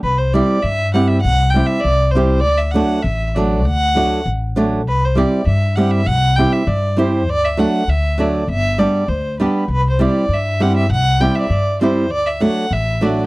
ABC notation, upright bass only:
X:1
M:2/4
L:1/8
Q:1/4=99
K:Clyd
V:1 name="Upright bass" clef=bass
C,,2 G,,2 | C,,2 C,,2 | D,,2 A,,,2 | D,,2 A,,,2 |
C,,2 G,,2 | C,,2 G,,2 | D,,2 D,,2 | G,,,2 D,,2 |
C,,2 G,,2 | C,,2 G,,2 | D,,2 A,,,2 |]